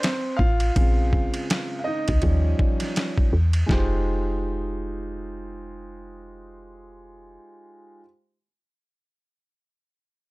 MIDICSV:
0, 0, Header, 1, 4, 480
1, 0, Start_track
1, 0, Key_signature, -4, "minor"
1, 0, Tempo, 731707
1, 502, Time_signature, 4, 2, 24, 8
1, 6758, End_track
2, 0, Start_track
2, 0, Title_t, "Grand piano"
2, 0, Program_c, 0, 0
2, 2, Note_on_c, 0, 72, 84
2, 23, Note_on_c, 0, 60, 62
2, 240, Note_on_c, 0, 77, 99
2, 245, Note_off_c, 0, 60, 0
2, 259, Note_off_c, 0, 72, 0
2, 262, Note_on_c, 0, 65, 77
2, 495, Note_on_c, 0, 49, 55
2, 500, Note_on_c, 0, 56, 48
2, 503, Note_on_c, 0, 60, 55
2, 1148, Note_off_c, 0, 77, 0
2, 1159, Note_off_c, 0, 65, 0
2, 1174, Note_on_c, 0, 77, 52
2, 1209, Note_on_c, 0, 75, 88
2, 1216, Note_off_c, 0, 77, 0
2, 1229, Note_on_c, 0, 63, 65
2, 1432, Note_off_c, 0, 49, 0
2, 1435, Note_off_c, 0, 56, 0
2, 1436, Note_off_c, 0, 60, 0
2, 1456, Note_on_c, 0, 53, 56
2, 1459, Note_on_c, 0, 55, 52
2, 1465, Note_on_c, 0, 61, 63
2, 2149, Note_off_c, 0, 75, 0
2, 2153, Note_off_c, 0, 53, 0
2, 2154, Note_off_c, 0, 55, 0
2, 2157, Note_off_c, 0, 61, 0
2, 2159, Note_off_c, 0, 63, 0
2, 2403, Note_on_c, 0, 56, 73
2, 2412, Note_on_c, 0, 63, 63
2, 2422, Note_on_c, 0, 65, 67
2, 2432, Note_on_c, 0, 67, 67
2, 2440, Note_on_c, 0, 72, 78
2, 5245, Note_off_c, 0, 56, 0
2, 5253, Note_off_c, 0, 63, 0
2, 5264, Note_off_c, 0, 65, 0
2, 5273, Note_off_c, 0, 67, 0
2, 5282, Note_off_c, 0, 72, 0
2, 6758, End_track
3, 0, Start_track
3, 0, Title_t, "FM bass"
3, 0, Program_c, 1, 39
3, 257, Note_on_c, 1, 33, 97
3, 466, Note_off_c, 1, 33, 0
3, 500, Note_on_c, 1, 34, 87
3, 831, Note_off_c, 1, 34, 0
3, 1369, Note_on_c, 1, 37, 85
3, 1450, Note_off_c, 1, 37, 0
3, 1464, Note_on_c, 1, 39, 98
3, 1670, Note_off_c, 1, 39, 0
3, 2183, Note_on_c, 1, 40, 89
3, 2389, Note_off_c, 1, 40, 0
3, 2422, Note_on_c, 1, 29, 79
3, 4841, Note_off_c, 1, 29, 0
3, 6758, End_track
4, 0, Start_track
4, 0, Title_t, "Drums"
4, 21, Note_on_c, 9, 44, 52
4, 21, Note_on_c, 9, 51, 70
4, 28, Note_on_c, 9, 38, 85
4, 87, Note_off_c, 9, 44, 0
4, 87, Note_off_c, 9, 51, 0
4, 94, Note_off_c, 9, 38, 0
4, 257, Note_on_c, 9, 36, 74
4, 323, Note_off_c, 9, 36, 0
4, 394, Note_on_c, 9, 51, 51
4, 459, Note_off_c, 9, 51, 0
4, 499, Note_on_c, 9, 36, 95
4, 499, Note_on_c, 9, 51, 68
4, 564, Note_off_c, 9, 51, 0
4, 565, Note_off_c, 9, 36, 0
4, 740, Note_on_c, 9, 36, 81
4, 806, Note_off_c, 9, 36, 0
4, 877, Note_on_c, 9, 51, 50
4, 942, Note_off_c, 9, 51, 0
4, 985, Note_on_c, 9, 44, 47
4, 985, Note_on_c, 9, 51, 71
4, 989, Note_on_c, 9, 38, 98
4, 1051, Note_off_c, 9, 44, 0
4, 1051, Note_off_c, 9, 51, 0
4, 1055, Note_off_c, 9, 38, 0
4, 1362, Note_on_c, 9, 51, 55
4, 1369, Note_on_c, 9, 36, 84
4, 1428, Note_off_c, 9, 51, 0
4, 1434, Note_off_c, 9, 36, 0
4, 1454, Note_on_c, 9, 51, 62
4, 1464, Note_on_c, 9, 36, 77
4, 1520, Note_off_c, 9, 51, 0
4, 1529, Note_off_c, 9, 36, 0
4, 1700, Note_on_c, 9, 36, 84
4, 1766, Note_off_c, 9, 36, 0
4, 1837, Note_on_c, 9, 51, 57
4, 1852, Note_on_c, 9, 38, 30
4, 1902, Note_off_c, 9, 51, 0
4, 1918, Note_off_c, 9, 38, 0
4, 1943, Note_on_c, 9, 44, 47
4, 1943, Note_on_c, 9, 51, 64
4, 1950, Note_on_c, 9, 38, 79
4, 2008, Note_off_c, 9, 44, 0
4, 2008, Note_off_c, 9, 51, 0
4, 2015, Note_off_c, 9, 38, 0
4, 2083, Note_on_c, 9, 36, 82
4, 2149, Note_off_c, 9, 36, 0
4, 2318, Note_on_c, 9, 51, 52
4, 2383, Note_off_c, 9, 51, 0
4, 2422, Note_on_c, 9, 36, 89
4, 2432, Note_on_c, 9, 38, 80
4, 2488, Note_off_c, 9, 36, 0
4, 2498, Note_off_c, 9, 38, 0
4, 6758, End_track
0, 0, End_of_file